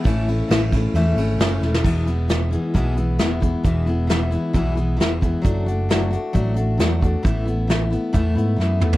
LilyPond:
<<
  \new Staff \with { instrumentName = "Steel-string acoustic guitar" } { \time 4/4 \key e \major \tempo 4 = 134 <a, e a cis' e'>8 <a cis' e'>8 <e a cis' e'>8 <a cis' e'>8 <a, e a cis' e'>8 <a cis' e'>8 <e a cis' e'>8 <a cis' e'>8 | <e, b, e gis b e'>8 <e gis b e'>8 <e gis b e'>8 <e gis b e'>8 <e, b, e gis b e'>8 <e gis b e'>8 <e gis b e'>8 <e gis b e'>8 | <e, b, e gis b e'>8 <e gis b e'>8 <e gis b e'>8 <e gis b e'>8 <e, b, e gis b e'>8 <e gis b e'>8 <e gis b e'>8 <e gis b e'>8 | <fis a d' fis'>8 <a d' fis'>8 <fis a d' fis'>8 <a d' fis'>8 <fis a d' fis'>8 <a d' fis'>8 <fis a d' fis'>8 <a d' fis'>8 |
<a, e a b e'>8 <a b e'>8 <e a b e'>8 <a b e'>8 <a, e a b e'>8 <a b e'>8 <e a b e'>8 <a b e'>8 | }
  \new Staff \with { instrumentName = "Picked electric bass" } { \clef bass \time 4/4 \key e \major a,,4 a,,4 e,8 gis,,8 fis,,8 e,,8 | e,,2 b,,4 e,,4 | e,,2 b,,4 e,,4 | fis,,2 a,,4 e,4 |
a,,2 e,8 gis,8 fis,8 e,8 | }
  \new DrumStaff \with { instrumentName = "Drums" } \drummode { \time 4/4 <bd cymr>8 cymr8 <cymr sn>8 <bd cymr>8 cymr8 cymr8 <cymr sn>8 sn16 sn16 | <cymc bd>8 hh8 <hh sn>8 hh8 <hh bd>8 hh8 <hh sn>8 <hh bd>8 | <hh bd>8 hh8 <hh sn>8 hh8 <hh bd>8 hh8 <hh sn>8 <hh bd>8 | <hh bd>8 hh8 <hh sn>8 hh8 <hh bd>8 hh8 <hh sn>8 <hh bd>8 |
<hh bd>8 hh8 <hh sn>8 hh8 <hh bd>8 hh8 sn8 toml16 tomfh16 | }
>>